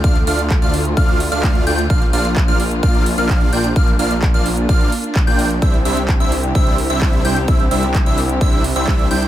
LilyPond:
<<
  \new Staff \with { instrumentName = "Digital synth lead" } { \time 4/4 \key bes \lydian \tempo 4 = 129 f'''16 r16 f'''16 r8 f'''16 r8 f'''8 r16 f'''8. g'''16 r16 | f'''16 r16 f'''16 r8 f'''16 r8 f'''8 r16 f'''8. g'''16 r16 | f'''16 r16 f'''16 r8 f'''16 r8 f'''8 r8. g'''8 r16 | e'''16 r16 e'''16 r8 e'''16 r8 e'''8 r16 e'''8. g'''16 r16 |
e'''16 r16 e'''16 r8 e'''16 r8 e'''8 r16 e'''8. g'''16 r16 | }
  \new Staff \with { instrumentName = "Supersaw synth" } { \time 4/4 \key bes \lydian <a d' f' d'' f''>16 r16 <a d' f' d'' f''>16 r8 <a d' f' d'' f''>16 r8 <a d' f' d'' f''>8 r16 <a d' f' d'' f''>8. <a d' f' d'' g''>16 r16 | <bes d' f' d'' f''>16 r16 <bes d' f' d'' f''>16 r8 <bes d' f' d'' f''>16 r8 <bes d' f' d'' f''>8 r16 <bes d' f' d'' f''>8. <bes d' f' d'' g''>16 r16 | <bes d' f' d'' f''>16 r16 <bes d' f' d'' f''>16 r8 <bes d' f' d'' f''>16 r8 <bes d' f' d'' f''>8 r8. <bes d' f' d'' g''>8 r16 | <g d' e' c'' e''>16 r16 <g d' e' c'' e''>16 r8 <g d' e' c'' e''>16 r8 <g d' e' c'' e''>8 r16 <g d' e' c'' e''>8. <g d' e' c'' g''>16 r16 |
<g d' e' c'' e''>16 r16 <g d' e' c'' e''>16 r8 <g d' e' c'' e''>16 r8 <g d' e' c'' e''>8 r16 <g d' e' c'' e''>8. <g d' e' c'' g''>16 r16 | }
  \new Staff \with { instrumentName = "String section" } { \time 4/4 \key bes \lydian << { <d' f'>1~ | <d' f'>1~ | <d' f'>1 | <c c' e' g'>1~ |
<c c' e' g'>1 | } \\ { a1 | bes1~ | bes1 | r1 |
r1 | } >> }
  \new Staff \with { instrumentName = "Detuned saw bass" } { \clef bass \time 4/4 \key bes \lydian d,8 d,8. d,8. d,8. d,8. d,8 | bes,,8 bes,,8. bes,,8. bes,,8. bes,,8. bes,,8 | bes,,8 bes,,8. bes,,8. bes,,8 r8. bes,,8. | c,8 c,8. c,8. c,8. c,8. c,8 |
c,8 c,8. c,8. c,8. c,8. c,8 | }
  \new DrumStaff \with { instrumentName = "Drums" } \drummode { \time 4/4 <hh bd>16 hh16 hho16 hh16 <hc hh bd>16 hh16 hho16 hh16 <hh bd>16 hh16 hho16 hh16 <hc hh bd>16 hh16 hho16 hh16 | <hh bd>16 hh16 hho16 hh16 <hc hh bd>16 hh16 hho16 hh16 <hh bd>16 hh16 hho16 hh16 <hc hh bd>16 hh16 hho16 hh16 | <hh bd>16 hh16 hho16 hh16 <hc hh bd>16 hh16 hho16 hh16 <hh bd>16 hh16 hho16 hh16 <hc hh bd>16 hh16 hho16 hh16 | <hh bd>16 hh16 hho16 hh16 <hc hh bd>16 hh16 hho16 hh16 <hh bd>16 hh16 hho8 <hc hh bd>16 hh16 hho16 hh16 |
<hh bd>16 hh16 hho16 hh16 <hc hh bd>16 hh16 hho16 hh16 <hh bd>16 hh16 hho8 <hc hh bd>16 hh16 hho16 hh16 | }
>>